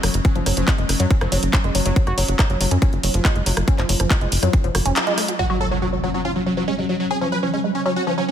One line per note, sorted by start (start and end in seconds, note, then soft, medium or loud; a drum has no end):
0.00 0.10 F#1 loud
0.00 5.38 F#3 medium
0.00 0.07 F#3 medium
0.00 1.98 C#4 medium
0.00 cross-stick medium
0.00 open hi-hat loud
0.14 0.20 F#1 medium
0.14 closed hi-hat medium
0.25 0.28 C#4 medium
0.25 kick loud
0.25 closed hi-hat medium
0.36 0.42 F#1 medium
0.36 0.39 F3 loud
0.36 closed hi-hat soft
0.46 0.52 F#1 loud
0.46 0.49 F#3 medium
0.46 cross-stick soft
0.46 open hi-hat loud
0.57 0.63 F#1 medium
0.57 0.65 F3 medium
0.57 closed hi-hat medium
0.68 0.73 G#3 medium
0.68 kick loud
0.68 clap loud
0.68 closed hi-hat medium
0.78 0.85 F#1 medium
0.78 0.84 G#3 medium
0.78 closed hi-hat soft
0.89 0.95 F#1 loud
0.89 cross-stick soft
0.89 open hi-hat loud
1.00 1.06 F#2 medium
1.00 1.03 F#3 loud
1.00 closed hi-hat medium
1.11 1.14 C#4 medium
1.11 kick loud
1.11 closed hi-hat medium
1.21 1.27 F#1 medium
1.21 1.24 F3 loud
1.21 cross-stick medium
1.21 closed hi-hat soft
1.32 1.38 F#1 loud
1.32 1.35 F#3 loud
1.32 open hi-hat loud
1.43 1.49 F#1 medium
1.43 closed hi-hat medium
1.53 kick loud
1.53 clap loud
1.53 closed hi-hat medium
1.64 1.70 F#1 medium
1.64 1.69 G#3 medium
1.64 cross-stick soft
1.64 closed hi-hat soft
1.75 1.81 F#1 loud
1.75 1.80 F#3 loud
1.75 open hi-hat loud
1.86 1.92 F#1 loud
1.86 1.89 F#3 loud
1.86 closed hi-hat medium
1.96 1.99 F#3 medium
1.96 5.41 F4 medium
1.96 kick loud
1.96 closed hi-hat medium
2.07 2.13 F#1 medium
2.07 2.12 F#4 loud
2.07 cross-stick soft
2.07 closed hi-hat soft
2.18 2.24 F#1 loud
2.18 2.23 F#3 loud
2.18 open hi-hat loud
2.28 2.35 F#1 medium
2.28 2.36 F#3 medium
2.28 closed hi-hat medium
2.39 2.42 F#4 medium
2.39 kick loud
2.39 cross-stick medium
2.39 clap loud
2.39 closed hi-hat medium
2.50 2.56 F#1 medium
2.50 2.58 F#3 medium
2.50 closed hi-hat soft
2.61 2.67 F#1 loud
2.61 2.66 F#3 medium
2.61 open hi-hat loud
2.71 2.77 F#2 medium
2.71 2.74 C#4 medium
2.71 closed hi-hat medium
2.82 2.85 C#4 medium
2.82 kick loud
2.82 cross-stick soft
2.82 closed hi-hat medium
2.93 2.99 F#1 medium
2.93 closed hi-hat soft
3.03 3.10 F#1 medium
3.03 3.11 F#3 medium
3.03 open hi-hat loud
3.14 3.20 F#1 medium
3.14 3.22 F3 medium
3.14 closed hi-hat medium
3.25 3.30 G#3 medium
3.25 kick loud
3.25 cross-stick soft
3.25 clap loud
3.25 closed hi-hat medium
3.36 3.42 F#1 medium
3.36 3.41 G#3 medium
3.36 closed hi-hat soft
3.46 3.52 F#1 loud
3.46 3.49 F#3 medium
3.46 open hi-hat loud
3.57 3.63 F#1 medium
3.57 cross-stick medium
3.57 closed hi-hat medium
3.68 3.71 C#4 medium
3.68 kick loud
3.68 closed hi-hat medium
3.78 3.84 F#1 medium
3.78 3.82 F3 loud
3.78 clap soft
3.78 closed hi-hat soft
3.89 3.95 F#1 loud
3.89 3.92 F#3 medium
3.89 open hi-hat loud
4.00 4.06 F#1 medium
4.00 4.08 F3 medium
4.00 cross-stick soft
4.00 closed hi-hat medium
4.11 4.16 G#3 medium
4.11 kick loud
4.11 clap loud
4.11 closed hi-hat medium
4.21 4.27 F#1 medium
4.21 4.26 G#3 medium
4.21 closed hi-hat soft
4.32 4.38 F#1 loud
4.32 open hi-hat loud
4.43 4.49 F#2 medium
4.43 4.46 F#3 loud
4.43 cross-stick soft
4.43 closed hi-hat medium
4.53 4.57 C#4 medium
4.53 kick loud
4.53 closed hi-hat medium
4.64 4.70 F#1 medium
4.64 4.67 F3 loud
4.64 closed hi-hat soft
4.75 4.81 F#1 loud
4.75 4.78 F#4 medium
4.75 cross-stick medium
4.75 open hi-hat loud
4.86 4.92 F#1 medium
4.86 4.91 C#4 loud
4.86 closed hi-hat medium
4.96 clap loud
4.96 closed hi-hat medium
5.07 5.12 G#3 loud
5.07 closed hi-hat soft
5.18 5.23 A3 medium
5.18 cross-stick soft
5.18 open hi-hat loud
5.28 5.36 F#4 medium
5.28 closed hi-hat medium
5.39 5.42 F#3 medium
5.39 8.31 F#3 medium
5.39 8.31 C#4 medium
5.39 5.45 F#4 medium
5.39 impact medium
5.50 5.56 F#3 medium
5.50 5.55 F#4 loud
5.61 5.66 F#3 loud
5.61 5.67 A4 medium
5.71 5.78 F#3 medium
5.71 5.79 F#3 medium
5.82 5.88 F#3 medium
5.82 5.85 F#4 medium
5.93 6.01 F#3 medium
6.03 6.10 F#3 medium
6.03 6.09 F#3 medium
6.14 6.20 F#3 medium
6.14 6.17 C#4 medium
6.25 6.28 C#4 medium
6.25 6.31 F4 medium
6.36 6.42 F#3 medium
6.46 6.53 F#3 medium
6.46 6.54 F#3 medium
6.57 6.65 F3 medium
6.57 6.63 F#3 medium
6.68 6.73 G#3 medium
6.68 6.74 C#4 medium
6.78 6.85 F#3 medium
6.78 6.84 G#3 medium
6.89 6.95 F#3 medium
6.89 6.92 F#3 medium
7.00 7.06 F#3 medium
7.10 7.14 C#4 medium
7.10 7.17 G#4 loud
7.21 7.24 F3 loud
7.21 7.27 C#4 medium
7.32 7.35 F#3 medium
7.32 7.38 B4 medium
7.43 7.51 F3 medium
7.43 7.49 C#4 medium
7.53 7.59 G#3 medium
7.53 7.60 C#4 medium
7.64 7.69 G#3 medium
7.75 7.81 C#4 medium
7.86 7.89 F#3 loud
7.86 7.92 C#4 medium
7.96 7.99 C#4 medium
7.96 8.03 F#4 medium
8.07 8.10 F3 loud
8.07 8.13 C#4 medium
8.18 8.21 F#3 loud
8.18 8.24 C#4 medium